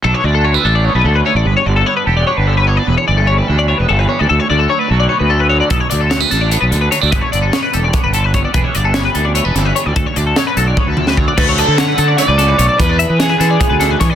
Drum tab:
CC |--------------|--------------|--------------|--------------|
HH |--------------|--------------|--------------|--------------|
SD |--------------|--------------|--------------|--------------|
T1 |--------------|--------------|--------------|--------------|
T2 |--------------|--------------|--------------|--------------|
BD |--------------|--------------|--------------|--------------|

CC |--------------|--------------|--------------|--------------|
HH |x-x-x-x-x-x-x-|x-x-x-x-x-x-x-|x-x-x-x-x-x-x-|x-x-x-x-------|
SD |----o-o-------|----o---------|----o-----o---|----o------o--|
T1 |--------------|--------------|--------------|--------o-----|
T2 |--------------|--------------|--------------|----------o---|
BD |o-------------|o-------o---o-|o-------------|o-------o---o-|

CC |x-------------|--------------|
HH |--x-x-x-x-x-x-|x-x-x-x-x-x-x-|
SD |----o---o-o---|----o-o---o-o-|
T1 |--------------|--------------|
T2 |--------------|--------------|
BD |o-------------|o-------o---o-|